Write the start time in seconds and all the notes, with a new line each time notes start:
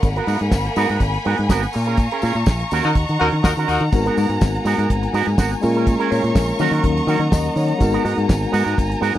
Already playing: F#5
0.03 G#1 A#3 G#5 B5, muted clean electric guitar stroke, kick, closed hi-hat, tambourine
0.16 B3 F#4 A#4, closed hi-hat
0.27 G#2 B3 F#4 A#4, open hi-hat, tambourine
0.39 G#2, muted clean electric guitar stroke, closed hi-hat
0.51 G#1, muted clean electric guitar stroke, kick, snare, tambourine
0.64 muted clean electric guitar stroke, closed hi-hat
0.76 G#2 B3 F#4 A#4, open hi-hat, tambourine
0.89 G#2 B3 F#4 A#4, closed hi-hat
1.00 G#1, kick, closed hi-hat, tambourine
1.14 muted clean electric guitar stroke, closed hi-hat
1.25 G#2 B3 F#4 A#4, open hi-hat
1.38 G#2, muted clean electric guitar stroke, closed hi-hat
1.49 G#1 B3 F#4 A#4, kick, snare, tambourine
1.63 muted clean electric guitar stroke, closed hi-hat
1.73 A#2 F5 A#5 C#6, muted clean electric guitar stroke, open hi-hat, tambourine
1.86 C#4 G#4 A#4, closed hi-hat
1.97 kick, closed hi-hat, tambourine
2.11 C#4 G#4 A#4, closed hi-hat
2.22 A#2 C#4 G#4 A#4, open hi-hat, tambourine
2.35 A#2, muted clean electric guitar stroke, closed hi-hat
2.46 A#1, muted clean electric guitar stroke, kick, snare, tambourine
2.59 muted clean electric guitar stroke, closed hi-hat
2.71 D#2 C#4 F#4 A#4 D#5 F#5, open hi-hat, tambourine
2.83 D#3 C#4 D#4 F#4 A#4, closed hi-hat
2.95 D#2, kick, closed hi-hat, tambourine
3.09 D#3, muted clean electric guitar stroke, closed hi-hat
3.19 D#2 C#4 D#4 F#4 A#4, open hi-hat
3.32 D#3, muted clean electric guitar stroke, closed hi-hat
3.43 D#2 D#4 F#4 A#4, muted clean electric guitar stroke, kick, snare, tambourine
3.57 D#3 C#4 F#4 A#4, closed hi-hat
3.68 D#2 D#4 F#4 A#4, open hi-hat, tambourine
3.81 D#3, muted clean electric guitar stroke, closed hi-hat
3.91 G#1 G#3 B3 D#4 F#4 G#5, muted clean electric guitar stroke, kick, closed hi-hat, tambourine
3.95 A#4
4.06 B3 F#4 A#4, closed hi-hat
4.17 G#2 B3 F#4 A#4, open hi-hat, tambourine
4.29 G#2, muted clean electric guitar stroke, closed hi-hat
4.41 G#1, muted clean electric guitar stroke, kick, snare, tambourine
4.55 muted clean electric guitar stroke, closed hi-hat
4.65 G#2 B3 F#4 A#4, open hi-hat, tambourine
4.78 G#2 B3 F#4 A#4, closed hi-hat
4.90 G#1, kick, closed hi-hat
5.03 muted clean electric guitar stroke, closed hi-hat
5.13 G#2 B3 F#4 A#4, open hi-hat, tambourine
5.26 G#2, muted clean electric guitar stroke, closed hi-hat
5.38 G#1 B3 F#4 A#4, kick, snare, tambourine
5.51 muted clean electric guitar stroke, closed hi-hat
5.61 A#2 G#3 A#3 C#4 F4 A#4 F5 A#5 C#6, muted clean electric guitar stroke, open hi-hat, tambourine
5.75 C#4 G#4 A#4, closed hi-hat
5.87 muted clean electric guitar stroke, kick, closed hi-hat, tambourine
6.00 C#4 G#4 A#4, closed hi-hat
6.10 A#2 C#4 G#4 A#4 C#5, open hi-hat, tambourine
6.24 A#2, muted clean electric guitar stroke, closed hi-hat
6.35 A#1 A#4, muted clean electric guitar stroke, kick, snare, tambourine
6.48 muted clean electric guitar stroke, closed hi-hat
6.59 D#3 F#3 A#3 C#4 D#4 F#4 A#4 D#5 F#5, open hi-hat, tambourine
6.71 D#3 C#4 F#4 A#4, closed hi-hat
6.84 D#2, kick, closed hi-hat
6.97 muted clean electric guitar stroke, closed hi-hat
7.07 D#3 C#4 F#4 A#4 F#5, open hi-hat, tambourine
7.19 D#3, muted clean electric guitar stroke, closed hi-hat
7.32 D#2 D#5, muted clean electric guitar stroke, kick, snare, tambourine
7.45 muted clean electric guitar stroke, closed hi-hat
7.55 D#3 C#5, open hi-hat, tambourine
7.68 muted clean electric guitar stroke, closed hi-hat
7.78 G#1 G#3 B3 D#4 F#4 A#4 G#5, muted clean electric guitar stroke, kick, closed hi-hat, tambourine
7.93 B3 F#4 A#4, closed hi-hat
8.04 G#2 B3 F#4 A#4, open hi-hat, tambourine
8.18 G#2, closed hi-hat
8.28 G#1, muted clean electric guitar stroke, kick, snare, tambourine
8.41 muted clean electric guitar stroke, closed hi-hat
8.52 G#2 B3 F#4 A#4, open hi-hat, tambourine
8.64 G#2 B3 F#4 A#4, closed hi-hat
8.78 G#1, kick, closed hi-hat, tambourine
8.90 muted clean electric guitar stroke, closed hi-hat
9.01 G#2 B3 F#4 A#4, open hi-hat, tambourine
9.14 G#2, muted clean electric guitar stroke